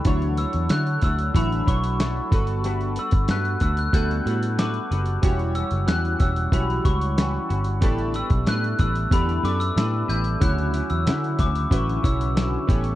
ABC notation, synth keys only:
X:1
M:4/4
L:1/16
Q:1/4=93
K:D
V:1 name="Synth keys"
[F,DEc]4- [F,DEc] z3 [F,DEe]2 [F,DEc]4 [G,B,FA]2- | [G,B,FA]4 z4 [G,B,FA]2 [G,B,FA]4 z2 | [G,EFc]4- [G,EFc] z3 [G,EFc]2 [G,EFc]4 z2 | [B,GAd]4- [B,GAd] z3 [B,GAd]2 [B,GAd]4 z2 |
[C,EFc]4- [C,EFc] z3 [CEFB]2 [C,EFc]4 [B,GAc]2 |]